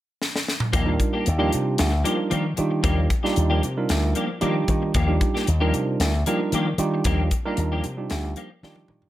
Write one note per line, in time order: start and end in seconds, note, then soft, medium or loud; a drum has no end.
0.22 snare medium
0.36 snare medium
0.48 snare medium
0.60 mid tom medium
0.73 0.96 D#2 medium
0.73 0.89 F3 medium
0.73 0.89 A#3 medium
0.73 0.89 D4 medium
0.73 0.89 G4 medium
0.73 kick loud
0.73 closed hi-hat medium
0.86 1.26 G3 medium
0.86 1.26 D4 medium
0.86 1.26 D#4 medium
0.86 1.26 F4 medium
0.86 1.26 A#4 medium
1.00 muted clean electric guitar stroke soft
1.00 kick medium
1.00 closed hi-hat medium
1.13 1.25 A#3 soft
1.13 1.25 D4 soft
1.13 1.25 G4 soft
1.26 1.49 D#2 medium
1.26 muted clean electric guitar stroke soft
1.26 closed hi-hat medium
1.38 1.51 F3 medium
1.38 1.89 G3 medium
1.38 1.51 A#3 medium
1.38 1.89 D4 medium
1.38 1.51 D4 medium
1.38 1.89 D#4 medium
1.38 1.89 F4 medium
1.38 1.89 G4 medium
1.38 1.52 G4 medium
1.52 1.76 C3 medium
1.52 muted clean electric guitar stroke soft
1.52 closed hi-hat medium
1.78 2.02 D2 medium
1.78 snare loud
1.78 closed hi-hat medium
1.92 muted clean electric guitar stroke soft
2.04 2.18 F3 medium
2.04 2.45 G3 medium
2.04 2.16 A#3 medium
2.04 2.45 D4 medium
2.04 2.16 D4 medium
2.04 2.45 D#4 medium
2.04 2.45 F4 medium
2.04 2.16 G4 medium
2.04 2.45 A#4 medium
2.04 closed hi-hat medium
2.17 muted clean electric guitar stroke soft
2.30 2.54 D#3 medium
2.30 2.44 F3 medium
2.30 2.43 A#3 medium
2.30 2.43 D4 medium
2.30 2.43 G4 medium
2.30 closed hi-hat medium
2.44 muted clean electric guitar stroke soft
2.56 2.81 D#3 medium
2.56 3.08 G3 medium
2.56 3.08 D4 medium
2.56 3.08 D#4 medium
2.56 3.08 F4 medium
2.56 3.08 G4 medium
2.56 muted clean electric guitar stroke soft
2.56 closed hi-hat medium
2.71 muted clean electric guitar stroke soft
2.83 3.07 D#2 loud
2.83 3.00 F3 medium
2.83 3.00 A#3 medium
2.83 3.00 D4 medium
2.83 3.00 G4 medium
2.83 kick loud
2.83 closed hi-hat medium
3.10 muted clean electric guitar stroke soft
3.10 kick medium
3.10 closed hi-hat medium
3.23 3.63 G3 medium
3.23 3.35 A#3 soft
3.23 3.35 D4 soft
3.23 3.64 D4 medium
3.23 3.63 D#4 medium
3.23 3.64 F4 medium
3.23 3.35 G4 soft
3.23 3.63 G4 medium
3.23 snare soft
3.36 3.60 D#2 medium
3.36 muted clean electric guitar stroke soft
3.36 closed hi-hat medium
3.50 3.61 F3 medium
3.50 3.61 A#3 medium
3.50 3.61 D4 medium
3.50 3.62 G4 medium
3.62 3.86 C3 medium
3.62 muted clean electric guitar stroke soft
3.62 closed hi-hat medium
3.77 4.27 G3 medium
3.77 4.27 D4 medium
3.77 4.27 D#4 medium
3.77 4.27 F4 medium
3.77 4.27 A#4 medium
3.89 4.12 D2 medium
3.89 snare loud
3.89 closed hi-hat medium
4.03 muted clean electric guitar stroke soft
4.15 4.29 F3 medium
4.15 4.28 A#3 medium
4.15 4.28 D4 medium
4.15 4.27 G4 medium
4.15 closed hi-hat medium
4.29 muted clean electric guitar stroke soft
4.41 4.65 D#3 medium
4.41 4.55 F3 medium
4.41 4.92 G3 medium
4.41 4.54 A#3 medium
4.41 4.91 D4 medium
4.41 4.54 D4 medium
4.41 4.92 D#4 medium
4.41 4.92 F4 medium
4.41 4.92 G4 medium
4.41 4.54 G4 medium
4.41 closed hi-hat medium
4.55 muted clean electric guitar stroke soft
4.68 4.91 D#3 loud
4.68 muted clean electric guitar stroke soft
4.68 kick medium
4.68 closed hi-hat soft
4.82 muted clean electric guitar stroke soft
4.94 5.18 D#2 medium
4.94 5.11 F3 medium
4.94 5.11 A#3 medium
4.94 5.11 D4 medium
4.94 5.11 G4 medium
4.94 kick loud
4.94 closed hi-hat medium
5.07 5.47 G3 medium
5.07 5.47 D4 medium
5.07 5.47 D#4 medium
5.07 5.47 F4 medium
5.07 5.47 G4 medium
5.21 muted clean electric guitar stroke soft
5.21 kick medium
5.21 closed hi-hat medium
5.34 5.45 A#3 soft
5.34 5.46 D4 soft
5.34 5.46 G4 medium
5.34 snare soft
5.46 5.70 D#2 medium
5.46 muted clean electric guitar stroke soft
5.46 closed hi-hat medium
5.60 5.73 F3 medium
5.60 6.11 G3 medium
5.60 5.73 A#3 medium
5.60 5.73 D4 medium
5.60 6.11 D4 medium
5.60 6.11 D#4 medium
5.60 6.11 F4 medium
5.60 5.74 G4 medium
5.60 6.11 A#4 medium
5.74 5.96 C3 medium
5.74 muted clean electric guitar stroke soft
5.74 closed hi-hat medium
6.00 6.22 D2 loud
6.00 snare loud
6.00 closed hi-hat medium
6.13 muted clean electric guitar stroke soft
6.26 6.40 F3 medium
6.26 6.67 G3 medium
6.26 6.40 A#3 medium
6.26 6.39 D4 medium
6.26 6.67 D4 medium
6.26 6.67 D#4 medium
6.26 6.67 F4 medium
6.26 6.39 G4 medium
6.26 6.67 A#4 medium
6.26 closed hi-hat medium
6.40 muted clean electric guitar stroke soft
6.52 6.75 D#3 medium
6.52 6.67 F3 medium
6.52 6.67 A#3 medium
6.52 6.66 D4 medium
6.52 6.66 G4 medium
6.52 closed hi-hat medium
6.67 muted clean electric guitar stroke soft
6.78 7.01 D#3 loud
6.78 7.29 G3 medium
6.78 7.29 D4 medium
6.78 7.29 D#4 medium
6.78 7.29 F4 medium
6.78 7.29 G4 medium
6.78 muted clean electric guitar stroke soft
6.78 closed hi-hat medium
6.94 muted clean electric guitar stroke medium
7.04 7.28 D#2 loud
7.04 7.22 F3 medium
7.04 7.22 A#3 medium
7.04 7.22 D4 medium
7.04 7.22 G4 medium
7.04 kick loud
7.04 closed hi-hat medium
7.31 muted clean electric guitar stroke soft
7.31 kick medium
7.31 closed hi-hat medium
7.45 7.85 G3 medium
7.45 7.58 A#3 soft
7.45 7.85 D4 medium
7.45 7.58 D4 soft
7.45 7.85 D#4 medium
7.45 7.85 F4 medium
7.45 7.58 G4 soft
7.45 7.85 A#4 medium
7.57 7.80 D#2 medium
7.57 muted clean electric guitar stroke soft
7.57 closed hi-hat medium
7.72 7.84 F3 medium
7.72 7.84 A#3 medium
7.72 7.84 D4 medium
7.72 7.84 G4 medium
7.84 8.07 C3 medium
7.84 muted clean electric guitar stroke soft
7.84 closed hi-hat medium
7.97 8.47 G3 medium
7.97 8.47 D4 medium
7.97 8.47 D#4 medium
7.97 8.47 F4 medium
7.97 8.47 G4 medium
8.10 8.33 D2 medium
8.10 snare loud
8.10 closed hi-hat medium
8.23 muted clean electric guitar stroke soft
8.36 8.50 F3 medium
8.36 8.49 A#3 medium
8.36 8.49 D4 medium
8.36 8.49 G4 medium
8.36 closed hi-hat medium
8.50 muted clean electric guitar stroke soft
8.63 8.85 D#3 medium
8.63 8.76 F3 medium
8.63 9.09 G3 medium
8.63 8.76 A#3 medium
8.63 8.76 D4 medium
8.63 9.09 D4 medium
8.63 9.09 D#4 medium
8.63 9.09 F4 medium
8.63 8.76 G4 loud
8.63 9.09 G4 medium
8.63 9.09 D5 medium
8.63 snare medium
8.76 muted clean electric guitar stroke soft
8.76 high tom medium
8.88 9.09 D#3 loud
8.88 muted clean electric guitar stroke soft
8.88 mid tom medium
9.02 muted clean electric guitar stroke soft
9.02 floor tom medium